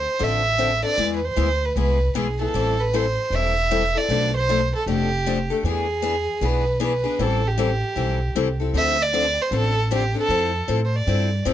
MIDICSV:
0, 0, Header, 1, 4, 480
1, 0, Start_track
1, 0, Key_signature, 0, "minor"
1, 0, Tempo, 388098
1, 1213, Time_signature, 4, 2, 24, 8
1, 14265, End_track
2, 0, Start_track
2, 0, Title_t, "Violin"
2, 0, Program_c, 0, 40
2, 0, Note_on_c, 0, 72, 89
2, 282, Note_on_c, 0, 76, 99
2, 301, Note_off_c, 0, 72, 0
2, 1047, Note_off_c, 0, 76, 0
2, 1058, Note_on_c, 0, 74, 101
2, 1393, Note_off_c, 0, 74, 0
2, 1437, Note_on_c, 0, 71, 61
2, 1547, Note_on_c, 0, 72, 92
2, 1566, Note_off_c, 0, 71, 0
2, 2039, Note_on_c, 0, 71, 81
2, 2058, Note_off_c, 0, 72, 0
2, 2198, Note_off_c, 0, 71, 0
2, 2218, Note_on_c, 0, 71, 80
2, 2646, Note_off_c, 0, 71, 0
2, 2694, Note_on_c, 0, 68, 73
2, 2955, Note_off_c, 0, 68, 0
2, 2989, Note_on_c, 0, 69, 85
2, 3466, Note_on_c, 0, 71, 89
2, 3484, Note_off_c, 0, 69, 0
2, 3654, Note_on_c, 0, 72, 85
2, 3673, Note_off_c, 0, 71, 0
2, 4141, Note_on_c, 0, 76, 97
2, 4160, Note_off_c, 0, 72, 0
2, 4912, Note_on_c, 0, 74, 99
2, 4931, Note_off_c, 0, 76, 0
2, 5376, Note_off_c, 0, 74, 0
2, 5404, Note_on_c, 0, 72, 97
2, 5831, Note_off_c, 0, 72, 0
2, 5878, Note_on_c, 0, 69, 77
2, 6029, Note_off_c, 0, 69, 0
2, 6056, Note_on_c, 0, 67, 87
2, 6769, Note_off_c, 0, 67, 0
2, 7024, Note_on_c, 0, 68, 95
2, 7974, Note_on_c, 0, 71, 86
2, 7993, Note_off_c, 0, 68, 0
2, 8439, Note_off_c, 0, 71, 0
2, 8457, Note_on_c, 0, 71, 77
2, 8932, Note_on_c, 0, 69, 84
2, 8951, Note_off_c, 0, 71, 0
2, 9246, Note_on_c, 0, 67, 79
2, 9265, Note_off_c, 0, 69, 0
2, 10662, Note_off_c, 0, 67, 0
2, 10860, Note_on_c, 0, 76, 105
2, 11157, Note_on_c, 0, 74, 110
2, 11176, Note_off_c, 0, 76, 0
2, 11645, Note_on_c, 0, 72, 93
2, 11663, Note_off_c, 0, 74, 0
2, 11802, Note_off_c, 0, 72, 0
2, 11829, Note_on_c, 0, 69, 98
2, 12251, Note_off_c, 0, 69, 0
2, 12307, Note_on_c, 0, 67, 83
2, 12561, Note_off_c, 0, 67, 0
2, 12609, Note_on_c, 0, 69, 97
2, 13197, Note_off_c, 0, 69, 0
2, 13422, Note_on_c, 0, 72, 64
2, 13545, Note_on_c, 0, 74, 80
2, 13563, Note_off_c, 0, 72, 0
2, 14187, Note_off_c, 0, 74, 0
2, 14265, End_track
3, 0, Start_track
3, 0, Title_t, "Steel-string acoustic guitar"
3, 0, Program_c, 1, 25
3, 237, Note_on_c, 1, 50, 67
3, 239, Note_on_c, 1, 53, 64
3, 245, Note_on_c, 1, 60, 70
3, 248, Note_on_c, 1, 62, 74
3, 253, Note_on_c, 1, 69, 70
3, 505, Note_off_c, 1, 50, 0
3, 507, Note_off_c, 1, 53, 0
3, 510, Note_off_c, 1, 60, 0
3, 511, Note_off_c, 1, 62, 0
3, 514, Note_off_c, 1, 69, 0
3, 720, Note_on_c, 1, 50, 79
3, 723, Note_on_c, 1, 53, 78
3, 728, Note_on_c, 1, 60, 85
3, 729, Note_on_c, 1, 62, 93
3, 736, Note_on_c, 1, 69, 99
3, 865, Note_off_c, 1, 50, 0
3, 866, Note_off_c, 1, 53, 0
3, 868, Note_off_c, 1, 60, 0
3, 869, Note_off_c, 1, 62, 0
3, 873, Note_off_c, 1, 69, 0
3, 1023, Note_on_c, 1, 69, 53
3, 1039, Note_on_c, 1, 62, 51
3, 1053, Note_on_c, 1, 60, 44
3, 1202, Note_off_c, 1, 69, 0
3, 1207, Note_on_c, 1, 52, 72
3, 1210, Note_off_c, 1, 62, 0
3, 1211, Note_off_c, 1, 60, 0
3, 1213, Note_on_c, 1, 56, 75
3, 1216, Note_on_c, 1, 59, 77
3, 1222, Note_on_c, 1, 64, 75
3, 1223, Note_on_c, 1, 68, 74
3, 1472, Note_off_c, 1, 52, 0
3, 1474, Note_off_c, 1, 56, 0
3, 1476, Note_off_c, 1, 59, 0
3, 1479, Note_off_c, 1, 64, 0
3, 1480, Note_off_c, 1, 68, 0
3, 1686, Note_on_c, 1, 52, 76
3, 1693, Note_on_c, 1, 59, 88
3, 1696, Note_on_c, 1, 56, 74
3, 1697, Note_on_c, 1, 64, 87
3, 1705, Note_on_c, 1, 68, 88
3, 1829, Note_off_c, 1, 52, 0
3, 1832, Note_off_c, 1, 59, 0
3, 1834, Note_off_c, 1, 56, 0
3, 1834, Note_off_c, 1, 64, 0
3, 1838, Note_off_c, 1, 68, 0
3, 2184, Note_on_c, 1, 52, 61
3, 2185, Note_on_c, 1, 56, 62
3, 2188, Note_on_c, 1, 59, 61
3, 2193, Note_on_c, 1, 64, 67
3, 2198, Note_on_c, 1, 68, 81
3, 2441, Note_off_c, 1, 52, 0
3, 2442, Note_off_c, 1, 56, 0
3, 2443, Note_off_c, 1, 59, 0
3, 2446, Note_off_c, 1, 64, 0
3, 2448, Note_off_c, 1, 68, 0
3, 2658, Note_on_c, 1, 56, 90
3, 2660, Note_on_c, 1, 52, 87
3, 2663, Note_on_c, 1, 59, 90
3, 2669, Note_on_c, 1, 64, 85
3, 2669, Note_on_c, 1, 68, 95
3, 2796, Note_off_c, 1, 56, 0
3, 2797, Note_off_c, 1, 52, 0
3, 2798, Note_off_c, 1, 59, 0
3, 2801, Note_off_c, 1, 64, 0
3, 2801, Note_off_c, 1, 68, 0
3, 2963, Note_on_c, 1, 68, 54
3, 2979, Note_on_c, 1, 64, 45
3, 2990, Note_on_c, 1, 59, 46
3, 3134, Note_off_c, 1, 68, 0
3, 3141, Note_on_c, 1, 52, 68
3, 3142, Note_off_c, 1, 64, 0
3, 3147, Note_off_c, 1, 59, 0
3, 3154, Note_on_c, 1, 55, 65
3, 3155, Note_on_c, 1, 60, 73
3, 3155, Note_on_c, 1, 64, 69
3, 3157, Note_on_c, 1, 69, 72
3, 3401, Note_off_c, 1, 52, 0
3, 3407, Note_off_c, 1, 55, 0
3, 3408, Note_off_c, 1, 60, 0
3, 3408, Note_off_c, 1, 64, 0
3, 3409, Note_off_c, 1, 69, 0
3, 3630, Note_on_c, 1, 52, 71
3, 3635, Note_on_c, 1, 55, 77
3, 3637, Note_on_c, 1, 64, 81
3, 3641, Note_on_c, 1, 69, 92
3, 3643, Note_on_c, 1, 60, 81
3, 3762, Note_off_c, 1, 52, 0
3, 3765, Note_off_c, 1, 55, 0
3, 3766, Note_off_c, 1, 64, 0
3, 3768, Note_off_c, 1, 69, 0
3, 3769, Note_off_c, 1, 60, 0
3, 4111, Note_on_c, 1, 52, 59
3, 4113, Note_on_c, 1, 55, 71
3, 4121, Note_on_c, 1, 60, 69
3, 4124, Note_on_c, 1, 64, 63
3, 4129, Note_on_c, 1, 69, 67
3, 4366, Note_off_c, 1, 52, 0
3, 4367, Note_off_c, 1, 55, 0
3, 4372, Note_off_c, 1, 60, 0
3, 4373, Note_off_c, 1, 64, 0
3, 4375, Note_off_c, 1, 69, 0
3, 4588, Note_on_c, 1, 52, 77
3, 4591, Note_on_c, 1, 55, 89
3, 4594, Note_on_c, 1, 60, 93
3, 4595, Note_on_c, 1, 64, 89
3, 4599, Note_on_c, 1, 69, 95
3, 4722, Note_off_c, 1, 52, 0
3, 4724, Note_off_c, 1, 55, 0
3, 4725, Note_off_c, 1, 60, 0
3, 4726, Note_off_c, 1, 64, 0
3, 4728, Note_off_c, 1, 69, 0
3, 4885, Note_on_c, 1, 69, 52
3, 4900, Note_on_c, 1, 64, 50
3, 4910, Note_on_c, 1, 60, 42
3, 5057, Note_off_c, 1, 69, 0
3, 5062, Note_on_c, 1, 47, 70
3, 5064, Note_off_c, 1, 64, 0
3, 5068, Note_off_c, 1, 60, 0
3, 5070, Note_on_c, 1, 53, 70
3, 5073, Note_on_c, 1, 57, 73
3, 5080, Note_on_c, 1, 62, 72
3, 5080, Note_on_c, 1, 69, 77
3, 5323, Note_off_c, 1, 47, 0
3, 5327, Note_off_c, 1, 53, 0
3, 5328, Note_off_c, 1, 57, 0
3, 5331, Note_off_c, 1, 69, 0
3, 5332, Note_off_c, 1, 62, 0
3, 5553, Note_on_c, 1, 47, 85
3, 5557, Note_on_c, 1, 53, 87
3, 5561, Note_on_c, 1, 62, 90
3, 5565, Note_on_c, 1, 57, 84
3, 5569, Note_on_c, 1, 69, 92
3, 5686, Note_off_c, 1, 47, 0
3, 5688, Note_off_c, 1, 53, 0
3, 5690, Note_off_c, 1, 62, 0
3, 5692, Note_off_c, 1, 57, 0
3, 5693, Note_off_c, 1, 69, 0
3, 6028, Note_on_c, 1, 47, 62
3, 6031, Note_on_c, 1, 57, 70
3, 6035, Note_on_c, 1, 53, 71
3, 6036, Note_on_c, 1, 62, 61
3, 6038, Note_on_c, 1, 69, 70
3, 6286, Note_off_c, 1, 47, 0
3, 6287, Note_off_c, 1, 57, 0
3, 6289, Note_off_c, 1, 53, 0
3, 6290, Note_off_c, 1, 62, 0
3, 6291, Note_off_c, 1, 69, 0
3, 6510, Note_on_c, 1, 47, 84
3, 6517, Note_on_c, 1, 53, 83
3, 6521, Note_on_c, 1, 57, 81
3, 6521, Note_on_c, 1, 62, 93
3, 6525, Note_on_c, 1, 69, 93
3, 6644, Note_off_c, 1, 47, 0
3, 6648, Note_off_c, 1, 53, 0
3, 6650, Note_off_c, 1, 57, 0
3, 6650, Note_off_c, 1, 62, 0
3, 6652, Note_off_c, 1, 69, 0
3, 6804, Note_on_c, 1, 69, 57
3, 6815, Note_on_c, 1, 62, 48
3, 6827, Note_on_c, 1, 57, 51
3, 6977, Note_off_c, 1, 69, 0
3, 6982, Note_off_c, 1, 62, 0
3, 6985, Note_off_c, 1, 57, 0
3, 6986, Note_on_c, 1, 52, 70
3, 6990, Note_on_c, 1, 59, 66
3, 6996, Note_on_c, 1, 62, 66
3, 6997, Note_on_c, 1, 68, 82
3, 7245, Note_off_c, 1, 52, 0
3, 7247, Note_off_c, 1, 59, 0
3, 7250, Note_off_c, 1, 62, 0
3, 7251, Note_off_c, 1, 68, 0
3, 7448, Note_on_c, 1, 52, 76
3, 7452, Note_on_c, 1, 59, 90
3, 7463, Note_on_c, 1, 62, 93
3, 7465, Note_on_c, 1, 68, 86
3, 7593, Note_off_c, 1, 52, 0
3, 7596, Note_off_c, 1, 59, 0
3, 7601, Note_off_c, 1, 62, 0
3, 7602, Note_off_c, 1, 68, 0
3, 7933, Note_on_c, 1, 52, 69
3, 7943, Note_on_c, 1, 59, 70
3, 7943, Note_on_c, 1, 62, 65
3, 7950, Note_on_c, 1, 68, 75
3, 8199, Note_off_c, 1, 52, 0
3, 8204, Note_off_c, 1, 59, 0
3, 8204, Note_off_c, 1, 62, 0
3, 8207, Note_off_c, 1, 68, 0
3, 8408, Note_on_c, 1, 52, 88
3, 8412, Note_on_c, 1, 59, 87
3, 8421, Note_on_c, 1, 62, 95
3, 8421, Note_on_c, 1, 68, 98
3, 8553, Note_off_c, 1, 52, 0
3, 8555, Note_off_c, 1, 59, 0
3, 8560, Note_off_c, 1, 62, 0
3, 8560, Note_off_c, 1, 68, 0
3, 8702, Note_on_c, 1, 68, 56
3, 8717, Note_on_c, 1, 62, 52
3, 8726, Note_on_c, 1, 59, 49
3, 8886, Note_off_c, 1, 68, 0
3, 8893, Note_off_c, 1, 62, 0
3, 8896, Note_on_c, 1, 52, 65
3, 8896, Note_on_c, 1, 55, 70
3, 8898, Note_off_c, 1, 59, 0
3, 8905, Note_on_c, 1, 60, 72
3, 8910, Note_on_c, 1, 64, 72
3, 8911, Note_on_c, 1, 69, 75
3, 9160, Note_off_c, 1, 52, 0
3, 9160, Note_off_c, 1, 55, 0
3, 9165, Note_off_c, 1, 60, 0
3, 9167, Note_off_c, 1, 64, 0
3, 9168, Note_off_c, 1, 69, 0
3, 9370, Note_on_c, 1, 52, 89
3, 9371, Note_on_c, 1, 55, 79
3, 9383, Note_on_c, 1, 64, 89
3, 9384, Note_on_c, 1, 60, 84
3, 9387, Note_on_c, 1, 69, 89
3, 9514, Note_off_c, 1, 52, 0
3, 9515, Note_off_c, 1, 55, 0
3, 9521, Note_off_c, 1, 60, 0
3, 9521, Note_off_c, 1, 64, 0
3, 9523, Note_off_c, 1, 69, 0
3, 9841, Note_on_c, 1, 52, 64
3, 9850, Note_on_c, 1, 55, 58
3, 9854, Note_on_c, 1, 64, 66
3, 9856, Note_on_c, 1, 69, 64
3, 9857, Note_on_c, 1, 60, 66
3, 10112, Note_off_c, 1, 52, 0
3, 10117, Note_off_c, 1, 55, 0
3, 10119, Note_off_c, 1, 64, 0
3, 10119, Note_off_c, 1, 69, 0
3, 10120, Note_off_c, 1, 60, 0
3, 10335, Note_on_c, 1, 52, 90
3, 10336, Note_on_c, 1, 55, 82
3, 10340, Note_on_c, 1, 60, 87
3, 10345, Note_on_c, 1, 64, 86
3, 10351, Note_on_c, 1, 69, 95
3, 10476, Note_off_c, 1, 52, 0
3, 10477, Note_off_c, 1, 55, 0
3, 10479, Note_off_c, 1, 60, 0
3, 10481, Note_off_c, 1, 64, 0
3, 10484, Note_off_c, 1, 69, 0
3, 10633, Note_on_c, 1, 69, 52
3, 10645, Note_on_c, 1, 64, 46
3, 10655, Note_on_c, 1, 60, 42
3, 10809, Note_off_c, 1, 60, 0
3, 10810, Note_off_c, 1, 69, 0
3, 10812, Note_on_c, 1, 50, 64
3, 10816, Note_off_c, 1, 64, 0
3, 10818, Note_on_c, 1, 53, 69
3, 10824, Note_on_c, 1, 60, 69
3, 10827, Note_on_c, 1, 69, 77
3, 10829, Note_on_c, 1, 62, 71
3, 11077, Note_off_c, 1, 50, 0
3, 11079, Note_off_c, 1, 53, 0
3, 11082, Note_off_c, 1, 60, 0
3, 11084, Note_off_c, 1, 69, 0
3, 11085, Note_off_c, 1, 62, 0
3, 11293, Note_on_c, 1, 50, 87
3, 11297, Note_on_c, 1, 53, 80
3, 11300, Note_on_c, 1, 60, 84
3, 11305, Note_on_c, 1, 62, 88
3, 11312, Note_on_c, 1, 69, 93
3, 11434, Note_off_c, 1, 50, 0
3, 11436, Note_off_c, 1, 53, 0
3, 11438, Note_off_c, 1, 60, 0
3, 11440, Note_off_c, 1, 62, 0
3, 11444, Note_off_c, 1, 69, 0
3, 11771, Note_on_c, 1, 50, 71
3, 11773, Note_on_c, 1, 53, 68
3, 11781, Note_on_c, 1, 60, 72
3, 11787, Note_on_c, 1, 62, 68
3, 11788, Note_on_c, 1, 69, 67
3, 12035, Note_off_c, 1, 50, 0
3, 12036, Note_off_c, 1, 53, 0
3, 12040, Note_off_c, 1, 60, 0
3, 12043, Note_off_c, 1, 62, 0
3, 12043, Note_off_c, 1, 69, 0
3, 12253, Note_on_c, 1, 50, 80
3, 12259, Note_on_c, 1, 53, 92
3, 12263, Note_on_c, 1, 60, 93
3, 12267, Note_on_c, 1, 69, 101
3, 12268, Note_on_c, 1, 62, 107
3, 12393, Note_off_c, 1, 50, 0
3, 12396, Note_off_c, 1, 53, 0
3, 12398, Note_off_c, 1, 60, 0
3, 12400, Note_off_c, 1, 62, 0
3, 12400, Note_off_c, 1, 69, 0
3, 12542, Note_on_c, 1, 69, 56
3, 12554, Note_on_c, 1, 62, 49
3, 12571, Note_on_c, 1, 60, 48
3, 12722, Note_off_c, 1, 69, 0
3, 12728, Note_off_c, 1, 62, 0
3, 12729, Note_off_c, 1, 60, 0
3, 12737, Note_on_c, 1, 53, 67
3, 12744, Note_on_c, 1, 60, 76
3, 12744, Note_on_c, 1, 64, 72
3, 12750, Note_on_c, 1, 69, 85
3, 12996, Note_off_c, 1, 53, 0
3, 13000, Note_off_c, 1, 60, 0
3, 13000, Note_off_c, 1, 64, 0
3, 13003, Note_off_c, 1, 69, 0
3, 13209, Note_on_c, 1, 53, 85
3, 13213, Note_on_c, 1, 60, 82
3, 13220, Note_on_c, 1, 69, 91
3, 13221, Note_on_c, 1, 64, 81
3, 13349, Note_off_c, 1, 53, 0
3, 13351, Note_off_c, 1, 60, 0
3, 13355, Note_off_c, 1, 64, 0
3, 13355, Note_off_c, 1, 69, 0
3, 13696, Note_on_c, 1, 53, 67
3, 13699, Note_on_c, 1, 60, 70
3, 13708, Note_on_c, 1, 64, 75
3, 13717, Note_on_c, 1, 69, 73
3, 13954, Note_off_c, 1, 53, 0
3, 13956, Note_off_c, 1, 60, 0
3, 13960, Note_off_c, 1, 64, 0
3, 13965, Note_off_c, 1, 69, 0
3, 14166, Note_on_c, 1, 53, 91
3, 14177, Note_on_c, 1, 64, 88
3, 14178, Note_on_c, 1, 60, 90
3, 14179, Note_on_c, 1, 69, 94
3, 14265, Note_off_c, 1, 53, 0
3, 14265, Note_off_c, 1, 60, 0
3, 14265, Note_off_c, 1, 64, 0
3, 14265, Note_off_c, 1, 69, 0
3, 14265, End_track
4, 0, Start_track
4, 0, Title_t, "Upright bass"
4, 0, Program_c, 2, 32
4, 253, Note_on_c, 2, 33, 79
4, 1022, Note_off_c, 2, 33, 0
4, 1209, Note_on_c, 2, 40, 83
4, 1595, Note_off_c, 2, 40, 0
4, 1692, Note_on_c, 2, 38, 76
4, 2102, Note_off_c, 2, 38, 0
4, 2173, Note_on_c, 2, 36, 84
4, 2583, Note_off_c, 2, 36, 0
4, 2659, Note_on_c, 2, 35, 75
4, 3067, Note_off_c, 2, 35, 0
4, 3141, Note_on_c, 2, 33, 84
4, 3909, Note_off_c, 2, 33, 0
4, 4086, Note_on_c, 2, 28, 72
4, 4861, Note_off_c, 2, 28, 0
4, 5055, Note_on_c, 2, 35, 83
4, 5826, Note_off_c, 2, 35, 0
4, 6015, Note_on_c, 2, 29, 83
4, 6787, Note_off_c, 2, 29, 0
4, 6968, Note_on_c, 2, 40, 87
4, 7742, Note_off_c, 2, 40, 0
4, 7928, Note_on_c, 2, 35, 78
4, 8702, Note_off_c, 2, 35, 0
4, 8892, Note_on_c, 2, 33, 86
4, 9664, Note_off_c, 2, 33, 0
4, 9847, Note_on_c, 2, 35, 78
4, 10261, Note_off_c, 2, 35, 0
4, 10332, Note_on_c, 2, 36, 73
4, 10744, Note_off_c, 2, 36, 0
4, 10802, Note_on_c, 2, 38, 85
4, 11576, Note_off_c, 2, 38, 0
4, 11762, Note_on_c, 2, 33, 83
4, 12534, Note_off_c, 2, 33, 0
4, 12721, Note_on_c, 2, 41, 89
4, 13110, Note_off_c, 2, 41, 0
4, 13207, Note_on_c, 2, 45, 80
4, 13617, Note_off_c, 2, 45, 0
4, 13691, Note_on_c, 2, 43, 83
4, 14098, Note_off_c, 2, 43, 0
4, 14169, Note_on_c, 2, 41, 83
4, 14265, Note_off_c, 2, 41, 0
4, 14265, End_track
0, 0, End_of_file